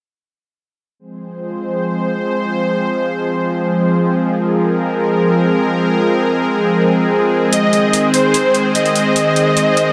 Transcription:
0.99 F3 G#3 C4 G#4 C5
4.26 A#4
7.53 D#3 C5 D#5, closed hi-hat
7.73 closed hi-hat
7.93 closed hi-hat
8.14 C5, closed hi-hat
8.34 closed hi-hat
8.55 closed hi-hat
8.75 D#5, closed hi-hat
8.86 closed hi-hat
8.96 closed hi-hat
9.16 closed hi-hat
9.36 closed hi-hat
9.57 closed hi-hat
9.77 closed hi-hat

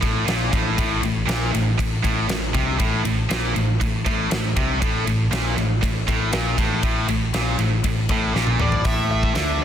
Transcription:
0.01 A1 A2, kick, ride
0.26 A#1 A#2, snare, ride
0.52 A1 A2, kick, ride
0.78 A1 A2, kick, ride
1.02 A1 A2, ride
1.27 A#1 A#2, snare, ride
1.54 A1 A2, ride
1.78 A1 A2, kick, ride
2.03 A1 A2, kick, ride
2.29 A1 A2, snare, ride
2.54 C2 C3, kick, ride
2.79 A1 A2, kick, ride
3.04 A1 A2, ride
3.30 A#1 A#2, snare, ride
3.55 A1 A2, ride
3.81 A1 A2, kick, ride
4.06 A1 A2, kick, ride
4.30 A1 A2, snare, ride
4.56 C2 C3, kick, ride
4.81 A1 A2, kick, ride
5.06 A1 A2, ride
5.31 A#1 A#2, snare, ride
5.57 A1 A2, ride
5.82 A1 A2, kick, ride
6.08 A1 A2, kick, ride
6.33 A#1 A#2, snare, ride
6.58 A1 A2, kick, ride
6.83 A1 A2, kick, ride
7.07 A1 A2, ride
7.34 A#1 A#2, snare, ride
7.58 A1 A2, ride
7.84 A1 A2, kick, ride
8.09 A1 A2, kick, ride
8.35 A#1 A#2, snare
8.47 high tom
8.59 A1 A2 D5, mid tom
8.72 floor tom
8.85 A1 A2 E5, kick, open hi-hat
9.11 E5
9.23 kick
9.35 D2 D3, snare, open hi-hat

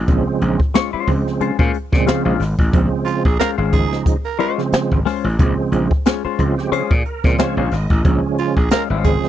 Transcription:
0.08 A#1 C#3 F3 G#3 C4, kick, closed hi-hat
0.41 A#1, closed hi-hat
0.60 kick
0.74 G#3 C#4 F4 C#5, snare, closed hi-hat
0.93 G#3 C#4 F4 C5, muted slap bass stroke
1.07 C#2 C#3 F3 G#3 C4, kick, open hi-hat
1.28 snare
1.40 G#3 C#4 F4 C5, muted slap bass stroke, closed hi-hat
1.59 A#2 G#3 C#4 F4 C5, kick
1.74 closed hi-hat
1.92 A#2 C#3 F3 G#3 C4, kick, snare
2.07 G#3 C#4 F4 C5, snare, closed hi-hat
2.25 A#1 G#3 C#4 F4 C5
2.40 G#1, snare, open hi-hat
2.59 A1, kick
2.72 A#1 C#3 F3 G#3 C4, kick, closed hi-hat
3.05 F4, closed hi-hat
3.25 A#1 G#4, kick
3.40 G#3 C#4 F4 A#4 C5, snare, closed hi-hat
3.58 G#1 G#3 C#4 F4 C5
3.73 C#3 F3 G#3 D#4 G#4, kick, closed hi-hat
3.92 snare
4.06 kick, closed hi-hat
4.25 A#4
4.39 G#3 C#4 F4 A#4 C5, closed hi-hat
4.58 C#3 F3 G#3 C4, snare
4.72 muted slap bass stroke, snare, closed hi-hat
4.92 G#1, kick
5.05 G#3 C#4 F4 C5, snare, open hi-hat
5.24 A1
5.39 A#1 C#3 F3 G#3 C4, kick, closed hi-hat
5.72 A#1, closed hi-hat
5.91 kick
6.05 G#3 C#4 F4 C#5, snare, closed hi-hat
6.25 G#3 C#4 F4 C5, muted slap bass stroke
6.39 C#2 C#3 F3 G#3 C4 F4, kick, closed hi-hat
6.58 G4, snare
6.72 G#3 C#4 F4 G#4 C5, muted slap bass stroke, closed hi-hat
6.91 A#2, kick
7.06 A#4, closed hi-hat
7.24 A#2 C#3 F3 G#3 C4, kick, snare
7.38 G#3 C#4 F4 C5 C#5, snare, closed hi-hat
7.57 A#1 G#3 C#4 F4 C5
7.71 G#1 D#5, snare, open hi-hat
7.90 A1, kick
8.04 A#1 C#3 F3 G#3 C#4, kick, closed hi-hat
8.38 F4, closed hi-hat
8.57 A#1 G#4, kick
8.71 G#3 C#4 F4 A#4 C5, muted slap bass stroke, snare, closed hi-hat
8.90 G#1 G#3 C#4 F4 C5
9.04 C#3 F3 G#3 C4 G#4, kick, closed hi-hat
9.24 snare

